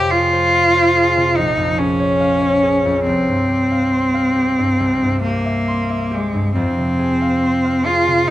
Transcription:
Already playing: F2 C3 F3 G4 F5
0.11 F4 G#4
0.33 C5
0.54 F5
0.76 C5
0.96 G#4
1.17 C3
1.37 A#1 D#4
1.57 F2
1.79 C#4 G#4
2.00 C#5
2.20 F5
2.42 C#5
2.63 G#4
2.85 F2
3.06 C2 C4
3.28 G2
3.49 G4
3.72 F5
3.93 C6
4.14 F5
4.36 G4
4.59 G2
4.80 C2
5.03 G2
5.25 A#3 G4
5.46 E5
5.68 C6
5.90 E5
6.11 G#3 G4
6.34 G2
6.55 F2 C4
6.78 C3
6.99 G#4
7.22 F5
7.44 C6
7.65 F5
7.86 F4 G#4
8.08 C3

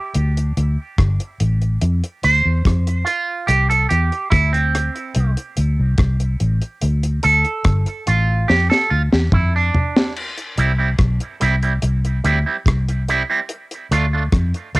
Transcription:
Already playing: G4
0.14 D2, closed hi-hat
0.37 closed hi-hat
0.57 D2, closed hi-hat
0.98 G1, kick, cross-stick, closed hi-hat
1.20 closed hi-hat
1.40 A1, closed hi-hat
1.62 closed hi-hat
1.81 F2, closed hi-hat
2.04 closed hi-hat
2.23 D2 C5, closed hi-hat
2.45 E2
2.65 F2, kick, cross-stick, closed hi-hat
2.87 closed hi-hat
3.05 F4, closed hi-hat
3.47 C2 G4, closed hi-hat
3.70 A4, closed hi-hat
3.89 E2 G4, closed hi-hat
4.12 closed hi-hat
4.30 D2 E4, kick, cross-stick, closed hi-hat
4.53 C4, closed hi-hat
4.75 cross-stick, closed hi-hat
4.95 closed hi-hat
5.14 C2, closed hi-hat
5.37 closed hi-hat
5.57 D2, closed hi-hat
5.80 C2
5.98 C2, kick, cross-stick, closed hi-hat
6.20 closed hi-hat
6.40 A1, closed hi-hat
6.62 closed hi-hat
6.82 D2, closed hi-hat
7.03 closed hi-hat
7.23 D2 A4, closed hi-hat
7.45 closed hi-hat
7.65 G1, kick, cross-stick, closed hi-hat
7.86 closed hi-hat
8.07 A1 F4, closed hi-hat
8.48 F2 G4, snare
8.70 A4, snare
8.90 D2 F4
9.13 E2, snare
9.32 F2 E4, kick, mid tom
9.56 D4
9.75 floor tom
9.97 snare
10.16 crash
10.38 closed hi-hat
10.58 C2 G3 C4 E4, closed hi-hat
10.79 G3 C4 E4
10.98 B1, kick, cross-stick, closed hi-hat
11.20 closed hi-hat
11.40 C2 G3 C4 E4, closed hi-hat
11.63 G3 C4 E4, closed hi-hat
11.82 C2, closed hi-hat
12.05 closed hi-hat
12.24 D2 G3 C4 E4, closed hi-hat
12.46 G3 C4 E4
12.66 C2, kick, cross-stick, closed hi-hat
12.88 closed hi-hat
13.08 G3 C4 E4, closed hi-hat
13.30 G3 C4 E4
13.49 closed hi-hat
13.71 closed hi-hat
13.91 D2 A3 D4 F4, closed hi-hat
14.13 A3 D4 F4
14.32 F2, kick, cross-stick, closed hi-hat
14.54 closed hi-hat
14.75 D2 A3 D4 F4, closed hi-hat

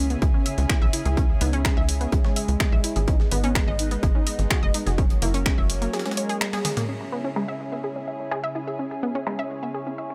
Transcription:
Already playing: C#2 C#3 C#4 E4 G#4
0.10 C#3 B3, closed hi-hat
0.22 C#2 C#3 G#4, kick, closed hi-hat
0.34 C#4
0.46 C#3 E5, closed hi-hat, open hi-hat
0.58 C#2 C#3, snare, closed hi-hat
0.70 E4 G#4, finger snap, kick, snare, closed hi-hat
0.82 B1 C#3 E5
0.93 C#3 E4, closed hi-hat, open hi-hat
1.05 C#2 E4 G#4, closed hi-hat
1.17 C#3 C#4, kick, closed hi-hat
1.29 C#3
1.41 C#2 B3 D#4, snare, closed hi-hat, open hi-hat
1.53 C#3 C#4, closed hi-hat
1.65 G#3 C#4, finger snap, kick, snare, closed hi-hat
1.77 C#2 C#3 E5
1.89 closed hi-hat, open hi-hat
2.01 C#3 B3, closed hi-hat
2.12 C#2 C#3 G#4, kick, closed hi-hat
2.24 G#3 C#4, snare
2.36 E5, closed hi-hat, open hi-hat
2.48 C#2, closed hi-hat
2.60 G#4, finger snap, kick, snare, closed hi-hat
2.72 B1 E5
2.84 E4, closed hi-hat, open hi-hat
2.96 G#1 G#4, closed hi-hat
3.07 G#3 B3 C#4 D#4, kick, closed hi-hat
3.20 G#3, snare
3.31 G#1 G#3 B3, closed hi-hat, open hi-hat
3.43 B3 C#4, closed hi-hat
3.55 G#3, finger snap, kick, snare, closed hi-hat
3.67 G#1 G#3 D#5
3.79 D#4, closed hi-hat, open hi-hat
3.91 G#3 B3, closed hi-hat
4.03 G#1 G#3 G#4, kick, closed hi-hat
4.15 C#4 D#4
4.27 G#3 D#5, closed hi-hat, open hi-hat
4.39 G#1 G#3, snare, closed hi-hat
4.50 F#4 G#4, finger snap, kick, snare, closed hi-hat
4.63 F#1 G#3 D#5
4.74 G#3 D#4, closed hi-hat, open hi-hat
4.86 F#1 F#4 G#4, snare, closed hi-hat
4.98 F#3 A#3 C#4, kick, closed hi-hat
5.10 F#3, closed hi-hat
5.22 F#1 A#3 E4, snare, open hi-hat
5.34 F#3 C#4, closed hi-hat
5.46 G#3 C#4, finger snap, kick, snare, closed hi-hat
5.58 F#1 F#3 E5
5.70 open hi-hat
5.82 F#3 A#3, closed hi-hat
5.93 F#3 G#4, snare, closed hi-hat
6.00 snare, closed hi-hat
6.05 G#3 C#4, snare, closed hi-hat
6.11 snare, closed hi-hat
6.17 C#5, closed hi-hat, open hi-hat
6.29 G#4, closed hi-hat
6.41 G#3, finger snap, snare, closed hi-hat, high tom
6.53 G#4, snare, closed hi-hat, high tom
6.65 G#4, snare, closed hi-hat, open hi-hat, mid tom
6.77 A#3, snare, closed hi-hat, mid tom
6.89 C#3 C#4 E4 G#4
7.01 finger snap, snare
7.12 B3
7.24 C#4
7.36 G#3, finger snap
7.48 E5
7.60 closed hi-hat
7.72 B3
7.84 G#4, closed hi-hat
7.96 C#4
8.08 E5, closed hi-hat
8.20 snare, closed hi-hat
8.31 G#4, finger snap
8.44 E5
8.55 E4, closed hi-hat
8.67 G#4
8.79 C#4, closed hi-hat
8.91 finger snap
9.03 B3, snare, closed hi-hat
9.15 C#4
9.27 G#3, finger snap, closed hi-hat
9.39 E5
9.51 closed hi-hat
9.63 B3, closed hi-hat
9.74 G#4, closed hi-hat
9.86 C#4, snare
9.98 E5, closed hi-hat
10.10 finger snap, closed hi-hat

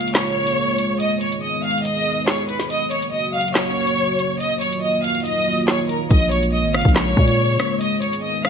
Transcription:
Already playing: C#3 G#3 A#3 F4 F5 F6
0.01 closed hi-hat
0.08 closed hi-hat
0.15 C#5 C#6, snare, clap, closed hi-hat
0.47 closed hi-hat
0.79 closed hi-hat
1.00 D#3 B3 G#4 D#5 D#6, closed hi-hat
1.21 C#5 C#6, closed hi-hat
1.32 closed hi-hat
1.42 D#5 D#6
1.64 F5 F6, closed hi-hat
1.71 closed hi-hat
1.78 closed hi-hat
1.85 D#5 D#6, closed hi-hat
2.28 C#5 C#6, snare, clap
2.38 closed hi-hat
2.49 B4 B5, closed hi-hat
2.60 snare
2.70 C#3 F#3 A#3 F#4 D#5 D#6, closed hi-hat
2.91 C#5 C#6, closed hi-hat
3.02 closed hi-hat
3.13 D#5 D#6
3.34 F5 F6, closed hi-hat
3.41 closed hi-hat
3.48 closed hi-hat
3.55 C#5 C#6, snare, clap, closed hi-hat
3.87 closed hi-hat
4.19 closed hi-hat
4.40 D#3 F#3 A#3 F4 D#5 D#6, closed hi-hat
4.61 C#5 C#6, closed hi-hat
4.73 closed hi-hat
4.83 D#5 D#6
5.04 F5 F6, closed hi-hat
5.10 closed hi-hat
5.15 closed hi-hat
5.20 closed hi-hat
5.25 D#5 D#6, closed hi-hat
5.68 C#5 C#6, snare, clap
5.79 closed hi-hat
5.89 A#4 A#5, closed hi-hat
6.11 A#1 C#3 G#3 D#5 D#6, kick, closed hi-hat
6.32 C#5 C#6, closed hi-hat
6.43 closed hi-hat
6.53 D#5 D#6
6.64 G#1
6.74 F5 F6, cross-stick, closed hi-hat
6.82 A#1, kick, closed hi-hat
6.89 closed hi-hat
6.96 C#5 C#6, snare, clap, closed hi-hat
7.17 A#2, kick
7.28 closed hi-hat
7.59 cross-stick, closed hi-hat
7.81 D#3 B3 G#4 D#5 D#6, closed hi-hat
8.02 C#5 C#6, closed hi-hat
8.13 closed hi-hat
8.23 D#5 D#6
8.45 F5 F6, cross-stick, closed hi-hat

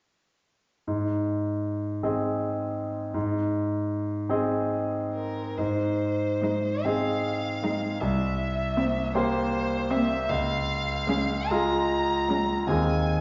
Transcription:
0.87 G#2
2.03 C4 G#4 D#5
3.14 G#2
4.29 C4 G#4 D#5
5.15 A#4
5.57 G#2 C5
6.42 G#3 D#4
6.84 C4 G#4 D#5 F5
7.63 G#3 D#4
8.00 C2 E5
8.77 A#3 C4
9.14 A#3 G4 C5
9.90 A#3 C4 E5
10.29 C#2 F5
11.08 G#3 C#4
11.50 G#3 F4 G#4 A#5
12.29 G#3 C#4
12.67 D#2 C4 D#4 G#4 G#5

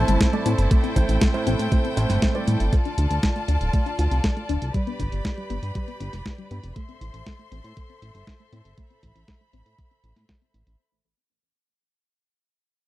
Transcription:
Already playing: A2 A3 C4 E4 A4 C5 A5
0.08 G1, closed hi-hat, high tom
0.21 A4, kick, snare, closed hi-hat
0.33 A2 A3 C4 E4 D5, closed hi-hat, high tom
0.46 A2 C4, closed hi-hat
0.58 G1, closed hi-hat
0.71 A3 G5, kick, closed hi-hat
0.84 C4, closed hi-hat
0.96 A1 A2 A3 C4 E4 C5, kick, closed hi-hat
1.09 A1, closed hi-hat
1.21 A4, kick, snare, closed hi-hat
1.34 A2 A3 C4 E4 C5, closed hi-hat
1.47 A1 C4, closed hi-hat
1.59 A2, closed hi-hat
1.72 A2 A3 C4 E4 C5, kick, closed hi-hat
1.84 C4, closed hi-hat
1.97 A1 A2 A3 C4 E4 C5 E5, closed hi-hat
2.10 G1, snare, closed hi-hat
2.22 E5, kick, snare, closed hi-hat
2.35 A2 A3 C4 E4 C5 D5, closed hi-hat, high tom
2.47 A2 E4, closed hi-hat, high tom
2.60 G1, closed hi-hat
2.72 A3 F4 D5 A5, kick, closed hi-hat
2.85 D4, closed hi-hat
2.98 D2 F4, closed hi-hat
3.10 D2, closed hi-hat
3.23 A4, kick, snare, closed hi-hat
3.36 A3, closed hi-hat
3.48 D2 D4, closed hi-hat
3.61 D1, closed hi-hat
3.73 A3, kick, closed hi-hat
3.86 D4, closed hi-hat
3.99 D2 F4, closed hi-hat
4.11 C2, closed hi-hat
4.24 A4, kick, snare, closed hi-hat
4.37 A3, closed hi-hat
4.49 D1 D4, closed hi-hat
4.62 C2, closed hi-hat
4.74 G3 G4 B4 B5, kick, closed hi-hat
4.87 B3, closed hi-hat
5.00 G1 D4, kick, closed hi-hat
5.12 G1, closed hi-hat
5.25 G4, kick, snare, closed hi-hat
5.37 G3, closed hi-hat
5.50 G1 B3, closed hi-hat
5.63 G2, closed hi-hat
5.75 G3, kick, closed hi-hat
5.88 B3, closed hi-hat
6.00 G1 D4, closed hi-hat
6.13 F1, snare, closed hi-hat
6.26 G4, kick, snare, closed hi-hat
6.38 G3, closed hi-hat
6.51 G2 B3, closed hi-hat
6.63 F1, closed hi-hat
6.76 A3 A4 C5 E5 C6, kick, closed hi-hat
6.89 C4, closed hi-hat
7.01 A1 E4, closed hi-hat
7.14 A1, closed hi-hat
7.26 A4, kick, snare, closed hi-hat
7.39 A3, closed hi-hat
7.52 A1 C4, closed hi-hat
7.64 A2, closed hi-hat
7.77 A3, kick, closed hi-hat
7.89 C4, closed hi-hat
8.02 A1 E4, closed hi-hat
8.15 G1, closed hi-hat
8.27 A4, kick, snare, closed hi-hat
8.40 A3, closed hi-hat
8.52 A2 C4, closed hi-hat
8.65 G1, closed hi-hat
8.78 A3 B5, kick, closed hi-hat
8.90 C4, closed hi-hat
9.03 A1 E4, kick, closed hi-hat
9.16 A1, closed hi-hat
9.28 A4, kick, snare, closed hi-hat
9.41 A3, closed hi-hat
9.53 A1 C4, closed hi-hat
9.66 A2, closed hi-hat
9.79 A3, kick, closed hi-hat
9.91 C4, closed hi-hat
10.04 A1 A3, closed hi-hat
10.16 A2 C4, snare, closed hi-hat
10.29 A4, kick, snare, closed hi-hat
10.42 C4, closed hi-hat
10.54 A1 C5, closed hi-hat
10.67 A1 C5, closed hi-hat

